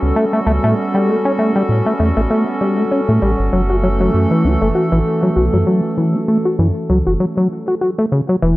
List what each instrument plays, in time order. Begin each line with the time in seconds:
Already playing: analog synth pad G3 B3 C#4 F#4 A4
0.02 analog synth bass C#2
0.16 acid bass A3
0.33 acid bass A3
0.47 analog synth bass C#2, acid bass A3
0.64 analog synth bass A2, acid bass A3
0.94 acid bass G3
1.08 acid bass A3
1.25 acid bass C#4
1.39 acid bass A3
1.56 acid bass G3
1.69 analog synth bass A2
1.86 acid bass A3
2.00 analog synth bass E2, acid bass A3
2.17 analog synth bass A1, acid bass A3
2.30 acid bass A3
2.61 acid bass G3
2.78 acid bass A3
2.92 acid bass C#4
3.09 analog synth bass A2, acid bass A3
3.22 analog synth bass A1, acid bass G3
3.39 analog synth bass G1
3.52 analog synth bass F#1, analog synth pad E3 A3 A4, acid bass F#3
3.70 acid bass F#4
3.83 acid bass F#3
4.00 acid bass F#3
4.14 analog synth bass F#2
4.31 acid bass E3
4.44 analog synth bass C#2, acid bass F#4
4.62 analog synth bass F#1, acid bass A3
4.75 acid bass F#4
4.92 analog synth bass A1, acid bass E3
5.23 acid bass F#3
5.36 analog synth bass B1, acid bass F#4
5.53 analog synth bass F#2, acid bass F#3
5.67 acid bass F#3
5.98 acid bass E3
6.15 acid bass F#4
6.28 acid bass A3
6.45 acid bass F#4
6.59 analog synth bass F#2, acid bass E3
6.89 analog synth bass C#2, acid bass F#3
7.07 analog synth bass F#1, acid bass F#4
7.20 acid bass F#3
7.37 acid bass F#3
7.68 acid bass F#4
7.81 acid bass F#4
7.98 acid bass A3
8.12 acid bass C#3
8.29 acid bass F#3
8.42 analog synth bass E1, analog synth pad D3 G3 B3 E4 B4, acid bass E3